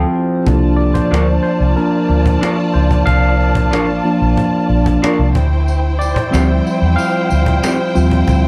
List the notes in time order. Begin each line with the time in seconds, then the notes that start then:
Already playing: F3 C4
0.16 E4
0.35 G4
0.45 C2 F3 A#3 D4 F4 A4 D5 A5, cajon bass
0.57 A4
0.68 C5
0.76 D5
0.81 cajon slap
0.94 C5, cajon bass
1.11 D2 D4 F4 A#4, cajon slap
1.43 C5, cajon slap
1.60 C2
1.76 F3 A#3 D4 A#4, cajon slap
2.09 D2, cajon slap
2.26 cajon bass
2.41 D4 F4 A#4, cajon slap
2.74 C#2 C5, cajon slap
2.91 cajon bass, cajon slap
3.06 C2 F5, cajon bass
3.41 cajon slap
3.55 cajon bass
3.71 A1 D4 F4 A#4, cajon slap
4.04 F3 A#3 D4, cajon slap
4.22 A#1
4.37 cajon bass, cajon slap
4.69 A#1, cajon slap
4.86 cajon bass
5.02 D4 F4 A#4, cajon slap
5.19 C2
5.34 D2 E4 C5 G5, cajon bass
5.53 cajon slap
5.68 cajon slap, tambourine
5.99 D5, cajon slap, tambourine
6.15 C5, cajon bass
6.31 D2 F3 G3 C4 F4 G4 E5, tambourine
6.35 cajon slap
6.65 cajon slap, tambourine
6.82 E2
6.96 F4 F5, cajon slap, tambourine
7.29 D2, cajon slap, tambourine
7.46 cajon bass
7.62 C4 F4 G4, cajon slap, tambourine
7.94 D#2 F3 G3 C4 F4, cajon slap, tambourine
8.11 cajon bass, cajon slap
8.28 D2, cajon bass, tambourine